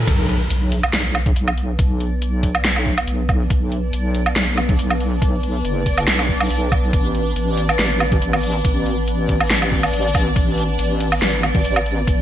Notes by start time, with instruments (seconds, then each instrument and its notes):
0.07 wobble bass B1, ambient pad B3 B4, synth texture D4 D5, kick, closed hi-hat, crash, impact
0.29 closed hi-hat
0.50 wobble bass B1, closed hi-hat
0.72 open hi-hat
0.83 low woodblock
0.93 wobble bass B1, snare, closed hi-hat
1.15 low woodblock
1.26 kick, closed hi-hat
1.36 wobble bass B1, closed hi-hat
1.48 low woodblock
1.57 closed hi-hat
1.79 wobble bass B1, kick, closed hi-hat
2.00 closed hi-hat
2.22 closed hi-hat
2.43 kick, open hi-hat
2.55 low woodblock
2.65 snare, closed hi-hat
2.76 low woodblock
2.86 kick
2.98 closed hi-hat, low woodblock
3.07 wobble bass B1, closed hi-hat
3.29 kick, closed hi-hat, low woodblock
3.50 wobble bass B1, kick, closed hi-hat
3.72 closed hi-hat
3.93 wobble bass B1, closed hi-hat
4.15 open hi-hat
4.26 low woodblock
4.36 wobble bass B1, snare, closed hi-hat
4.57 low woodblock
4.69 kick, closed hi-hat
4.79 wobble bass B1, closed hi-hat
4.90 low woodblock
5.00 closed hi-hat
5.22 wobble bass B1, kick, closed hi-hat
5.43 closed hi-hat
5.65 wobble bass F#1, closed hi-hat
5.86 kick, open hi-hat
5.98 low woodblock
6.07 wobble bass B1, snare, closed hi-hat
6.19 low woodblock
6.29 kick
6.40 closed hi-hat, low woodblock
6.50 wobble bass B1, closed hi-hat
6.72 kick, closed hi-hat, low woodblock
6.93 wobble bass A1, kick, closed hi-hat
7.15 closed hi-hat
7.36 wobble bass A1, closed hi-hat
7.58 open hi-hat
7.69 low woodblock
7.79 wobble bass A1, snare, closed hi-hat
8.00 low woodblock
8.12 kick, closed hi-hat
8.22 wobble bass A1, closed hi-hat
8.33 low woodblock
8.43 closed hi-hat
8.65 wobble bass A1, kick, closed hi-hat
8.86 closed hi-hat
9.08 closed hi-hat
9.29 kick, open hi-hat
9.40 low woodblock
9.50 snare, closed hi-hat
9.62 low woodblock
9.72 kick
9.83 closed hi-hat, low woodblock
9.93 wobble bass A1, closed hi-hat
10.15 kick, closed hi-hat, low woodblock
10.36 wobble bass A1, kick, closed hi-hat
10.58 closed hi-hat
10.79 wobble bass A1, closed hi-hat
11.00 open hi-hat
11.12 low woodblock
11.22 wobble bass A1, snare, closed hi-hat
11.43 low woodblock
11.55 kick, closed hi-hat
11.65 wobble bass A1, closed hi-hat
11.76 low woodblock
11.86 closed hi-hat
12.07 wobble bass A1, kick, closed hi-hat